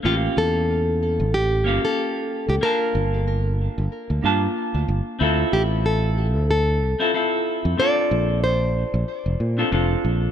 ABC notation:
X:1
M:4/4
L:1/16
Q:"Swing 16ths" 1/4=93
K:Dm
V:1 name="Nylon-string guitar"
F2 A6 G3 A4 G | B12 z4 | z2 G2 A4 A8 | d4 c8- c2 z2 |]
V:2 name="Clean electric guitar"
[B,^CFG]8- [B,CFG]2 [B,CFG]6 | [B,DFa]8- [B,DFa]2 [B,DFa]6 | [CEFA]8- [CEFA]2 z [CEFA] [CEFA]4 | [CDFA]8- [CDFA]2 z [CDFA] [CDFA]4 |]
V:3 name="Fretless electric bass" clef=bass
A,,, z E,,4- E,, A,,,3 G,,, z4 ^C,, | z2 G,,,4 z G,,, z D,, G,, z2 D,, G,,, z | D,, z A,,,4- A,,, D,,3 C,, z4 F,, | z2 B,,,4 z B,,, z F,,, B,, z F,,, z B,,, z |]